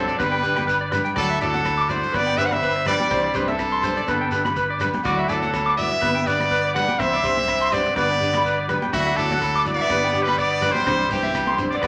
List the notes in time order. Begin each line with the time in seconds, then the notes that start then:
Already playing: F#3 C4 D4 E4 G4 A4
0.00 C4
0.08 D5, closed hi-hat, shekere
0.19 G1 G3 B3 D4 G4 B4, kick, cross-stick, closed hi-hat, low agogo, shekere
0.32 G5
0.43 D4 G4 B4, closed hi-hat, shekere
0.56 G5, cross-stick, closed hi-hat, high conga, low agogo
0.67 B4, kick, closed hi-hat, shekere
0.81 D5
0.91 D4 G4 B4, cross-stick, closed hi-hat, low conga, low agogo, shekere
1.05 G5, closed hi-hat
1.16 D2 F#3 A3 E4 F#4 A4 D5, muted nylon-string guitar stroke, kick, cross-stick, closed hi-hat, low agogo, shekere
1.30 E5
1.40 D2 F#3 E4 F#4 A4 D5, closed hi-hat, shekere
1.54 F#5, closed hi-hat, high conga, shekere
1.65 kick, cross-stick, closed hi-hat, low agogo, shekere
1.78 D6
1.89 A3 E4 F#4 C5 D5, closed hi-hat, low conga, shekere
2.03 closed hi-hat, shekere
2.13 G1 B3 D4 G4 B4 D5, kick, cross-stick, closed hi-hat, low agogo, shekere
2.27 G5
2.37 C4 D4 G4 B4 E5, closed hi-hat, shekere
2.45 D4 F#5
2.51 E5, muted clean electric guitar stroke, cross-stick, closed hi-hat, high conga, low agogo
2.56 C4
2.62 B4, kick, closed hi-hat, shekere
2.76 muted clean electric guitar stroke
2.85 D4 G4 B4 D5, cross-stick, closed hi-hat, low conga, low agogo, shekere
2.90 G3
3.00 G5, closed hi-hat, high conga
3.10 C2 E3 C4 D4 E4 G4 C5, kick, cross-stick, closed hi-hat, low agogo, shekere
3.24 D5
3.34 C2 C4 D4 G4 B4 C5, kick, closed hi-hat, low conga, shekere
3.38 G3
3.48 E3 A4 E5, closed hi-hat, high conga
3.59 kick, cross-stick, closed hi-hat, low agogo, shekere
3.72 C6
3.83 C4 D4 G4 C5, closed hi-hat, low conga, shekere
3.97 D5, closed hi-hat
4.07 G1 B3 D4 G4 B4, kick, cross-stick, closed hi-hat, low agogo, shekere
4.21 G5
4.31 D4 G4 B4, closed hi-hat, shekere
4.45 B5, cross-stick, closed hi-hat, high conga, low agogo, shekere
4.56 B4, kick, closed hi-hat, shekere
4.70 D5
4.80 D4 G4 B4, cross-stick, closed hi-hat, low conga, low agogo, shekere
4.93 muted clean electric guitar stroke, closed hi-hat, high conga, shekere
5.04 D2 D3 F#3 A3 D4 E4 F#4 D5, kick, cross-stick, closed hi-hat, low agogo, shekere
5.19 E5
5.29 D2 F#3 A3 E4 F#4 A4 D5, closed hi-hat, shekere
5.42 F#5, closed hi-hat, high conga, shekere
5.54 kick, cross-stick, closed hi-hat, low agogo, shekere
5.66 D6
5.77 A3 B3 E4 F#4 D5 E5, closed hi-hat, low conga, shekere
5.91 E5, closed hi-hat, shekere
6.01 G1 B3 D4 G4 B4, kick, cross-stick, closed hi-hat, low agogo, shekere
6.15 G5
6.26 B3 D4 G4 B4 D5, closed hi-hat, shekere
6.39 cross-stick, closed hi-hat, high conga, low agogo
6.51 B4, kick, closed hi-hat, shekere
6.65 D5
6.74 D4 G4 B4 F#5, cross-stick, closed hi-hat, low conga, low agogo, shekere
6.88 G5, closed hi-hat, high conga
6.99 C2 E3 C4 E4 C5 E5, muted nylon-string guitar stroke, kick, cross-stick, closed hi-hat, low agogo, shekere
7.13 D5
7.24 C2 C4 D4 G4 C5, kick, closed hi-hat, shekere
7.37 E5, closed hi-hat, high conga, shekere
7.47 kick, cross-stick, closed hi-hat, low agogo, shekere
7.61 C6
7.72 B3 C4 D4 G4 C5 D5, closed hi-hat, low conga, shekere
7.86 muted clean electric guitar stroke, closed hi-hat, shekere
7.95 G1 B3 D4 G4 B4 D5, kick, cross-stick, closed hi-hat, low agogo, shekere
8.00 B3
8.11 muted clean electric guitar stroke
8.20 D4 G4, closed hi-hat, shekere
8.33 B5, cross-stick, closed hi-hat, high conga, low agogo
8.45 B4, kick, closed hi-hat, shekere
8.58 D5
8.68 D4 G4 B4, cross-stick, closed hi-hat, low conga, low agogo, shekere
8.82 G5, closed hi-hat, high conga
8.92 D2 D3 F#3 A3 E4 F#4 E5, kick, cross-stick, closed hi-hat, low agogo, shekere
9.07 E5
9.16 D2 F#3 A3 E4 F#4 A4 D5, closed hi-hat, shekere
9.30 F#5, closed hi-hat, high conga, shekere
9.42 kick, cross-stick, closed hi-hat, low agogo, shekere
9.55 D6
9.65 A3 E4 F#4 D5, closed hi-hat, low conga, shekere
9.73 B3 D5
9.78 E5, closed hi-hat, shekere
9.89 G1 B3 D4 G4 B4, kick, cross-stick, closed hi-hat, low agogo, shekere
10.04 G5
10.13 D4 G4, closed hi-hat, shekere
10.22 G3 B4
10.27 B5, cross-stick, closed hi-hat, high conga, low agogo
10.38 B3 D5, kick, closed hi-hat, shekere
10.52 D5
10.61 D4 G4 B4, cross-stick, closed hi-hat, low conga, low agogo, shekere
10.71 G3 C5, closed hi-hat, high conga
10.76 G5
10.85 C2 E3 C4 D4 E4 G4 C5, kick, cross-stick, closed hi-hat, low conga, low agogo, shekere
11.10 C2 E3 C4 D4 G4 C5, kick, closed hi-hat, low conga, shekere
11.23 E5, closed hi-hat, high conga
11.35 kick, cross-stick, closed hi-hat, low agogo, shekere
11.47 C6, high conga
11.58 C4 D4 G4 C5, closed hi-hat, low conga, shekere
11.71 B3 D5, closed hi-hat, shekere
11.82 G1 B3 D4 G4 B4, kick, cross-stick, closed hi-hat, low agogo, shekere